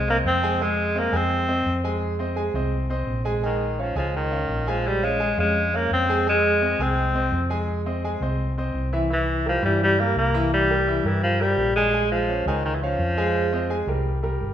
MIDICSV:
0, 0, Header, 1, 4, 480
1, 0, Start_track
1, 0, Key_signature, -4, "minor"
1, 0, Tempo, 353774
1, 820, Time_signature, 4, 2, 24, 8
1, 19725, End_track
2, 0, Start_track
2, 0, Title_t, "Grand piano"
2, 0, Program_c, 0, 0
2, 110, Note_on_c, 0, 60, 74
2, 115, Note_on_c, 0, 72, 77
2, 121, Note_on_c, 0, 75, 77
2, 499, Note_off_c, 0, 60, 0
2, 503, Note_off_c, 0, 72, 0
2, 506, Note_off_c, 0, 75, 0
2, 581, Note_on_c, 0, 56, 91
2, 584, Note_on_c, 0, 68, 90
2, 591, Note_on_c, 0, 80, 96
2, 777, Note_off_c, 0, 56, 0
2, 779, Note_off_c, 0, 68, 0
2, 783, Note_off_c, 0, 80, 0
2, 825, Note_on_c, 0, 56, 82
2, 830, Note_on_c, 0, 68, 79
2, 835, Note_on_c, 0, 80, 80
2, 1216, Note_off_c, 0, 56, 0
2, 1219, Note_off_c, 0, 68, 0
2, 1222, Note_off_c, 0, 80, 0
2, 1290, Note_on_c, 0, 60, 69
2, 1293, Note_on_c, 0, 72, 70
2, 1301, Note_on_c, 0, 75, 75
2, 1490, Note_off_c, 0, 60, 0
2, 1492, Note_off_c, 0, 72, 0
2, 1497, Note_off_c, 0, 75, 0
2, 1525, Note_on_c, 0, 56, 82
2, 1531, Note_on_c, 0, 68, 79
2, 1533, Note_on_c, 0, 80, 82
2, 1924, Note_off_c, 0, 56, 0
2, 1927, Note_off_c, 0, 68, 0
2, 1929, Note_off_c, 0, 80, 0
2, 2011, Note_on_c, 0, 60, 74
2, 2012, Note_on_c, 0, 72, 76
2, 2016, Note_on_c, 0, 75, 75
2, 2407, Note_off_c, 0, 60, 0
2, 2408, Note_off_c, 0, 72, 0
2, 2410, Note_off_c, 0, 75, 0
2, 2499, Note_on_c, 0, 56, 90
2, 2504, Note_on_c, 0, 68, 87
2, 2506, Note_on_c, 0, 80, 88
2, 2891, Note_off_c, 0, 56, 0
2, 2894, Note_off_c, 0, 68, 0
2, 2896, Note_off_c, 0, 80, 0
2, 2972, Note_on_c, 0, 60, 73
2, 2982, Note_on_c, 0, 72, 75
2, 2982, Note_on_c, 0, 75, 75
2, 3171, Note_off_c, 0, 60, 0
2, 3177, Note_off_c, 0, 72, 0
2, 3177, Note_off_c, 0, 75, 0
2, 3200, Note_on_c, 0, 56, 75
2, 3204, Note_on_c, 0, 68, 79
2, 3209, Note_on_c, 0, 80, 81
2, 3404, Note_off_c, 0, 56, 0
2, 3406, Note_off_c, 0, 68, 0
2, 3409, Note_off_c, 0, 80, 0
2, 3456, Note_on_c, 0, 60, 72
2, 3462, Note_on_c, 0, 72, 74
2, 3466, Note_on_c, 0, 75, 68
2, 3850, Note_off_c, 0, 60, 0
2, 3853, Note_off_c, 0, 72, 0
2, 3856, Note_off_c, 0, 75, 0
2, 3931, Note_on_c, 0, 60, 76
2, 3939, Note_on_c, 0, 72, 74
2, 3940, Note_on_c, 0, 75, 78
2, 4327, Note_off_c, 0, 60, 0
2, 4332, Note_off_c, 0, 72, 0
2, 4333, Note_off_c, 0, 75, 0
2, 4407, Note_on_c, 0, 56, 86
2, 4414, Note_on_c, 0, 68, 88
2, 4417, Note_on_c, 0, 80, 89
2, 4608, Note_off_c, 0, 56, 0
2, 4612, Note_off_c, 0, 68, 0
2, 4614, Note_off_c, 0, 80, 0
2, 4654, Note_on_c, 0, 56, 80
2, 4657, Note_on_c, 0, 68, 71
2, 4660, Note_on_c, 0, 80, 77
2, 5049, Note_off_c, 0, 56, 0
2, 5051, Note_off_c, 0, 68, 0
2, 5053, Note_off_c, 0, 80, 0
2, 5143, Note_on_c, 0, 61, 73
2, 5145, Note_on_c, 0, 73, 74
2, 5151, Note_on_c, 0, 77, 68
2, 5338, Note_off_c, 0, 61, 0
2, 5339, Note_off_c, 0, 73, 0
2, 5342, Note_off_c, 0, 77, 0
2, 5369, Note_on_c, 0, 56, 81
2, 5371, Note_on_c, 0, 68, 81
2, 5377, Note_on_c, 0, 80, 78
2, 5767, Note_off_c, 0, 56, 0
2, 5768, Note_off_c, 0, 68, 0
2, 5772, Note_off_c, 0, 80, 0
2, 5850, Note_on_c, 0, 61, 69
2, 5858, Note_on_c, 0, 73, 76
2, 5861, Note_on_c, 0, 77, 74
2, 6248, Note_off_c, 0, 61, 0
2, 6253, Note_off_c, 0, 73, 0
2, 6255, Note_off_c, 0, 77, 0
2, 6338, Note_on_c, 0, 56, 85
2, 6338, Note_on_c, 0, 68, 91
2, 6349, Note_on_c, 0, 80, 94
2, 6733, Note_off_c, 0, 56, 0
2, 6733, Note_off_c, 0, 68, 0
2, 6739, Note_off_c, 0, 80, 0
2, 6821, Note_on_c, 0, 61, 79
2, 6827, Note_on_c, 0, 73, 78
2, 6829, Note_on_c, 0, 77, 73
2, 7018, Note_off_c, 0, 61, 0
2, 7022, Note_off_c, 0, 73, 0
2, 7023, Note_off_c, 0, 77, 0
2, 7050, Note_on_c, 0, 56, 75
2, 7055, Note_on_c, 0, 68, 80
2, 7057, Note_on_c, 0, 80, 83
2, 7252, Note_off_c, 0, 56, 0
2, 7255, Note_off_c, 0, 68, 0
2, 7256, Note_off_c, 0, 80, 0
2, 7299, Note_on_c, 0, 61, 72
2, 7302, Note_on_c, 0, 73, 74
2, 7307, Note_on_c, 0, 77, 72
2, 7695, Note_off_c, 0, 61, 0
2, 7696, Note_off_c, 0, 73, 0
2, 7699, Note_off_c, 0, 77, 0
2, 7781, Note_on_c, 0, 61, 81
2, 7785, Note_on_c, 0, 73, 72
2, 7792, Note_on_c, 0, 77, 74
2, 8176, Note_off_c, 0, 61, 0
2, 8179, Note_off_c, 0, 73, 0
2, 8183, Note_off_c, 0, 77, 0
2, 8265, Note_on_c, 0, 68, 88
2, 8267, Note_on_c, 0, 56, 90
2, 8276, Note_on_c, 0, 80, 92
2, 8462, Note_off_c, 0, 68, 0
2, 8463, Note_off_c, 0, 56, 0
2, 8468, Note_off_c, 0, 80, 0
2, 8500, Note_on_c, 0, 68, 79
2, 8502, Note_on_c, 0, 56, 75
2, 8510, Note_on_c, 0, 80, 81
2, 8897, Note_off_c, 0, 68, 0
2, 8898, Note_off_c, 0, 56, 0
2, 8902, Note_off_c, 0, 80, 0
2, 8977, Note_on_c, 0, 60, 72
2, 8980, Note_on_c, 0, 72, 73
2, 8988, Note_on_c, 0, 75, 69
2, 9178, Note_off_c, 0, 60, 0
2, 9180, Note_off_c, 0, 72, 0
2, 9185, Note_off_c, 0, 75, 0
2, 9225, Note_on_c, 0, 56, 83
2, 9228, Note_on_c, 0, 68, 80
2, 9232, Note_on_c, 0, 80, 80
2, 9620, Note_off_c, 0, 56, 0
2, 9622, Note_off_c, 0, 68, 0
2, 9624, Note_off_c, 0, 80, 0
2, 9693, Note_on_c, 0, 60, 73
2, 9704, Note_on_c, 0, 72, 74
2, 9705, Note_on_c, 0, 75, 79
2, 10093, Note_off_c, 0, 60, 0
2, 10100, Note_off_c, 0, 72, 0
2, 10100, Note_off_c, 0, 75, 0
2, 10176, Note_on_c, 0, 56, 90
2, 10184, Note_on_c, 0, 68, 92
2, 10184, Note_on_c, 0, 80, 91
2, 10575, Note_off_c, 0, 56, 0
2, 10580, Note_off_c, 0, 68, 0
2, 10580, Note_off_c, 0, 80, 0
2, 10662, Note_on_c, 0, 60, 75
2, 10668, Note_on_c, 0, 72, 74
2, 10670, Note_on_c, 0, 75, 76
2, 10862, Note_off_c, 0, 60, 0
2, 10866, Note_off_c, 0, 72, 0
2, 10867, Note_off_c, 0, 75, 0
2, 10913, Note_on_c, 0, 56, 79
2, 10915, Note_on_c, 0, 68, 85
2, 10920, Note_on_c, 0, 80, 80
2, 11109, Note_off_c, 0, 56, 0
2, 11110, Note_off_c, 0, 68, 0
2, 11113, Note_off_c, 0, 80, 0
2, 11152, Note_on_c, 0, 60, 69
2, 11158, Note_on_c, 0, 72, 76
2, 11164, Note_on_c, 0, 75, 72
2, 11545, Note_off_c, 0, 60, 0
2, 11549, Note_off_c, 0, 72, 0
2, 11552, Note_off_c, 0, 75, 0
2, 11636, Note_on_c, 0, 60, 69
2, 11644, Note_on_c, 0, 72, 75
2, 11650, Note_on_c, 0, 75, 72
2, 12028, Note_off_c, 0, 60, 0
2, 12033, Note_off_c, 0, 72, 0
2, 12036, Note_off_c, 0, 75, 0
2, 12113, Note_on_c, 0, 52, 86
2, 12114, Note_on_c, 0, 64, 86
2, 12121, Note_on_c, 0, 76, 87
2, 12309, Note_off_c, 0, 52, 0
2, 12310, Note_off_c, 0, 64, 0
2, 12314, Note_off_c, 0, 76, 0
2, 12351, Note_on_c, 0, 52, 75
2, 12354, Note_on_c, 0, 64, 77
2, 12357, Note_on_c, 0, 76, 74
2, 12745, Note_off_c, 0, 52, 0
2, 12746, Note_off_c, 0, 64, 0
2, 12748, Note_off_c, 0, 76, 0
2, 12835, Note_on_c, 0, 55, 71
2, 12839, Note_on_c, 0, 67, 69
2, 12840, Note_on_c, 0, 70, 72
2, 13030, Note_off_c, 0, 55, 0
2, 13033, Note_off_c, 0, 67, 0
2, 13033, Note_off_c, 0, 70, 0
2, 13060, Note_on_c, 0, 52, 84
2, 13066, Note_on_c, 0, 64, 81
2, 13068, Note_on_c, 0, 76, 81
2, 13458, Note_off_c, 0, 52, 0
2, 13462, Note_off_c, 0, 64, 0
2, 13463, Note_off_c, 0, 76, 0
2, 13553, Note_on_c, 0, 55, 74
2, 13562, Note_on_c, 0, 67, 77
2, 13563, Note_on_c, 0, 70, 74
2, 13946, Note_off_c, 0, 55, 0
2, 13951, Note_off_c, 0, 67, 0
2, 13952, Note_off_c, 0, 70, 0
2, 14032, Note_on_c, 0, 52, 91
2, 14032, Note_on_c, 0, 64, 91
2, 14034, Note_on_c, 0, 76, 95
2, 14425, Note_off_c, 0, 52, 0
2, 14425, Note_off_c, 0, 64, 0
2, 14426, Note_off_c, 0, 76, 0
2, 14521, Note_on_c, 0, 55, 78
2, 14523, Note_on_c, 0, 67, 76
2, 14526, Note_on_c, 0, 70, 74
2, 14714, Note_off_c, 0, 55, 0
2, 14715, Note_off_c, 0, 67, 0
2, 14717, Note_off_c, 0, 70, 0
2, 14750, Note_on_c, 0, 52, 79
2, 14758, Note_on_c, 0, 64, 80
2, 14761, Note_on_c, 0, 76, 81
2, 14947, Note_off_c, 0, 52, 0
2, 14952, Note_off_c, 0, 64, 0
2, 14954, Note_off_c, 0, 76, 0
2, 14999, Note_on_c, 0, 55, 71
2, 15000, Note_on_c, 0, 67, 71
2, 15007, Note_on_c, 0, 70, 70
2, 15389, Note_off_c, 0, 55, 0
2, 15389, Note_off_c, 0, 67, 0
2, 15393, Note_off_c, 0, 70, 0
2, 15476, Note_on_c, 0, 55, 71
2, 15477, Note_on_c, 0, 67, 75
2, 15484, Note_on_c, 0, 70, 73
2, 15866, Note_off_c, 0, 55, 0
2, 15867, Note_off_c, 0, 67, 0
2, 15871, Note_off_c, 0, 70, 0
2, 15965, Note_on_c, 0, 56, 93
2, 15967, Note_on_c, 0, 68, 92
2, 15973, Note_on_c, 0, 80, 89
2, 16155, Note_off_c, 0, 56, 0
2, 16156, Note_off_c, 0, 68, 0
2, 16160, Note_off_c, 0, 80, 0
2, 16194, Note_on_c, 0, 56, 80
2, 16199, Note_on_c, 0, 68, 81
2, 16202, Note_on_c, 0, 80, 78
2, 16585, Note_off_c, 0, 56, 0
2, 16588, Note_off_c, 0, 68, 0
2, 16590, Note_off_c, 0, 80, 0
2, 16672, Note_on_c, 0, 61, 72
2, 16679, Note_on_c, 0, 73, 70
2, 16681, Note_on_c, 0, 77, 67
2, 16867, Note_off_c, 0, 61, 0
2, 16871, Note_off_c, 0, 73, 0
2, 16872, Note_off_c, 0, 77, 0
2, 16920, Note_on_c, 0, 56, 78
2, 16923, Note_on_c, 0, 68, 79
2, 16931, Note_on_c, 0, 80, 81
2, 17308, Note_off_c, 0, 56, 0
2, 17310, Note_off_c, 0, 68, 0
2, 17314, Note_off_c, 0, 80, 0
2, 17407, Note_on_c, 0, 61, 75
2, 17410, Note_on_c, 0, 73, 78
2, 17414, Note_on_c, 0, 77, 79
2, 17792, Note_off_c, 0, 61, 0
2, 17794, Note_off_c, 0, 73, 0
2, 17796, Note_off_c, 0, 77, 0
2, 17875, Note_on_c, 0, 68, 90
2, 17877, Note_on_c, 0, 56, 95
2, 17882, Note_on_c, 0, 80, 89
2, 18265, Note_off_c, 0, 68, 0
2, 18266, Note_off_c, 0, 56, 0
2, 18269, Note_off_c, 0, 80, 0
2, 18352, Note_on_c, 0, 60, 76
2, 18352, Note_on_c, 0, 72, 72
2, 18360, Note_on_c, 0, 75, 75
2, 18546, Note_off_c, 0, 60, 0
2, 18546, Note_off_c, 0, 72, 0
2, 18551, Note_off_c, 0, 75, 0
2, 18582, Note_on_c, 0, 56, 77
2, 18589, Note_on_c, 0, 68, 81
2, 18595, Note_on_c, 0, 80, 82
2, 18780, Note_off_c, 0, 56, 0
2, 18784, Note_off_c, 0, 68, 0
2, 18788, Note_off_c, 0, 80, 0
2, 18830, Note_on_c, 0, 55, 74
2, 18831, Note_on_c, 0, 67, 68
2, 18843, Note_on_c, 0, 70, 68
2, 19221, Note_off_c, 0, 55, 0
2, 19222, Note_off_c, 0, 67, 0
2, 19229, Note_off_c, 0, 70, 0
2, 19304, Note_on_c, 0, 55, 72
2, 19310, Note_on_c, 0, 67, 72
2, 19315, Note_on_c, 0, 70, 76
2, 19697, Note_off_c, 0, 55, 0
2, 19701, Note_off_c, 0, 67, 0
2, 19704, Note_off_c, 0, 70, 0
2, 19725, End_track
3, 0, Start_track
3, 0, Title_t, "Alto saxophone"
3, 0, Program_c, 1, 65
3, 136, Note_on_c, 1, 58, 105
3, 236, Note_off_c, 1, 58, 0
3, 365, Note_on_c, 1, 60, 107
3, 849, Note_on_c, 1, 56, 102
3, 870, Note_off_c, 1, 60, 0
3, 1336, Note_on_c, 1, 58, 102
3, 1357, Note_off_c, 1, 56, 0
3, 1577, Note_on_c, 1, 60, 101
3, 1597, Note_off_c, 1, 58, 0
3, 2517, Note_off_c, 1, 60, 0
3, 4681, Note_on_c, 1, 51, 80
3, 5170, Note_on_c, 1, 53, 86
3, 5191, Note_off_c, 1, 51, 0
3, 5394, Note_off_c, 1, 53, 0
3, 5402, Note_on_c, 1, 53, 82
3, 5614, Note_off_c, 1, 53, 0
3, 5644, Note_on_c, 1, 51, 94
3, 6370, Note_on_c, 1, 53, 92
3, 6391, Note_off_c, 1, 51, 0
3, 6609, Note_on_c, 1, 55, 97
3, 6629, Note_off_c, 1, 53, 0
3, 6845, Note_on_c, 1, 56, 100
3, 6865, Note_off_c, 1, 55, 0
3, 7314, Note_off_c, 1, 56, 0
3, 7331, Note_on_c, 1, 56, 90
3, 7810, Note_on_c, 1, 58, 100
3, 7830, Note_off_c, 1, 56, 0
3, 8037, Note_off_c, 1, 58, 0
3, 8050, Note_on_c, 1, 60, 101
3, 8485, Note_off_c, 1, 60, 0
3, 8534, Note_on_c, 1, 56, 106
3, 9253, Note_on_c, 1, 60, 95
3, 9273, Note_off_c, 1, 56, 0
3, 10202, Note_off_c, 1, 60, 0
3, 12389, Note_on_c, 1, 52, 96
3, 12818, Note_off_c, 1, 52, 0
3, 12872, Note_on_c, 1, 53, 98
3, 13076, Note_off_c, 1, 53, 0
3, 13090, Note_on_c, 1, 55, 90
3, 13305, Note_off_c, 1, 55, 0
3, 13342, Note_on_c, 1, 55, 112
3, 13564, Note_on_c, 1, 58, 104
3, 13584, Note_off_c, 1, 55, 0
3, 13798, Note_off_c, 1, 58, 0
3, 13812, Note_on_c, 1, 58, 103
3, 14248, Note_off_c, 1, 58, 0
3, 14294, Note_on_c, 1, 55, 102
3, 15010, Note_on_c, 1, 52, 85
3, 15031, Note_off_c, 1, 55, 0
3, 15228, Note_off_c, 1, 52, 0
3, 15236, Note_on_c, 1, 53, 105
3, 15485, Note_on_c, 1, 55, 99
3, 15505, Note_off_c, 1, 53, 0
3, 15947, Note_off_c, 1, 55, 0
3, 15955, Note_on_c, 1, 56, 108
3, 16398, Note_off_c, 1, 56, 0
3, 16439, Note_on_c, 1, 53, 97
3, 16880, Note_off_c, 1, 53, 0
3, 16926, Note_on_c, 1, 51, 81
3, 17140, Note_off_c, 1, 51, 0
3, 17166, Note_on_c, 1, 51, 88
3, 17299, Note_on_c, 1, 52, 62
3, 17319, Note_off_c, 1, 51, 0
3, 17406, Note_on_c, 1, 53, 96
3, 17426, Note_off_c, 1, 52, 0
3, 18834, Note_off_c, 1, 53, 0
3, 19725, End_track
4, 0, Start_track
4, 0, Title_t, "Fingered electric bass"
4, 0, Program_c, 2, 33
4, 0, Note_on_c, 2, 36, 89
4, 289, Note_off_c, 2, 36, 0
4, 336, Note_on_c, 2, 41, 90
4, 1458, Note_off_c, 2, 41, 0
4, 1528, Note_on_c, 2, 41, 91
4, 2202, Note_off_c, 2, 41, 0
4, 2248, Note_on_c, 2, 41, 92
4, 3374, Note_off_c, 2, 41, 0
4, 3443, Note_on_c, 2, 36, 89
4, 4119, Note_off_c, 2, 36, 0
4, 4162, Note_on_c, 2, 34, 86
4, 5292, Note_off_c, 2, 34, 0
4, 5367, Note_on_c, 2, 37, 91
4, 6043, Note_off_c, 2, 37, 0
4, 6089, Note_on_c, 2, 34, 93
4, 7218, Note_off_c, 2, 34, 0
4, 7297, Note_on_c, 2, 41, 96
4, 7970, Note_off_c, 2, 41, 0
4, 8015, Note_on_c, 2, 41, 89
4, 9144, Note_off_c, 2, 41, 0
4, 9214, Note_on_c, 2, 36, 100
4, 9891, Note_off_c, 2, 36, 0
4, 9929, Note_on_c, 2, 41, 94
4, 11063, Note_off_c, 2, 41, 0
4, 11134, Note_on_c, 2, 36, 89
4, 11812, Note_off_c, 2, 36, 0
4, 11856, Note_on_c, 2, 36, 85
4, 12986, Note_off_c, 2, 36, 0
4, 13062, Note_on_c, 2, 43, 92
4, 13736, Note_off_c, 2, 43, 0
4, 13781, Note_on_c, 2, 36, 94
4, 14907, Note_off_c, 2, 36, 0
4, 14980, Note_on_c, 2, 43, 92
4, 15654, Note_off_c, 2, 43, 0
4, 15702, Note_on_c, 2, 34, 92
4, 16826, Note_off_c, 2, 34, 0
4, 16901, Note_on_c, 2, 37, 98
4, 17573, Note_off_c, 2, 37, 0
4, 17621, Note_on_c, 2, 41, 87
4, 18744, Note_off_c, 2, 41, 0
4, 18819, Note_on_c, 2, 36, 93
4, 19491, Note_off_c, 2, 36, 0
4, 19547, Note_on_c, 2, 31, 89
4, 19725, Note_off_c, 2, 31, 0
4, 19725, End_track
0, 0, End_of_file